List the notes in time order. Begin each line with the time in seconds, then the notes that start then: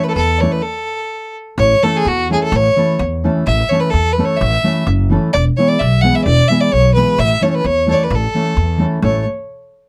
Already playing: E3 A3 C#4 E4 A4
0.04 B4
0.08 A4 B4
0.16 E2 A4
0.38 E3 A3 C#5 D5
0.42 C#4 E4 A4
0.52 B4
0.63 A4
1.58 A1 C#5
1.83 E3 A3 C#4 E4 A4
1.97 G#4
2.05 E2 F#4
2.30 E3 A3 C#4 E4 G#4 A4
2.43 A4
2.52 A1 C#5
2.76 E3 A3 C#4 E4 A4
2.99 E2
3.24 E3 A3 C#4 E4 A4
3.47 A1 E5
3.69 E3 A3 C#4 E4 A4 C#5
3.80 B4
3.90 E2 A4
4.12 B4
4.18 E3 A3 C#4 E4 A4
4.25 C#5
4.37 E5
4.41 A1
4.63 E3 A3 C#4 E4 A4
4.87 F#1
5.10 E3 A3 C#4 E4 A4
5.33 E1 D5
5.57 E3 G#3 B3 E4 G#4 C#5
5.68 D5
5.79 B1 E5
6.01 E3 G#3 B3 E4 G#4 F#5
6.15 E5
6.24 E1 D5
6.48 E3 G#3 B3 E4 G#4 E5
6.61 D5
6.72 B1 C#5
6.94 E3 G#3 B3 E4 G#4 B4
7.18 A1 E5
7.41 E3 A3 C#4 E4 A4 C#5
7.50 C#5
7.54 B4
7.64 E2 C#5
7.87 E3 A3 C#4 E4 A4 C#5
7.92 D5
7.97 C#5
8.04 B4
8.10 A1
8.15 A4
8.34 E3 A3 C#4 E4 A4
8.57 E2
8.78 E3 A3 C#4 E4 A4
9.02 A1 A3 C#4 E4 A4 C#5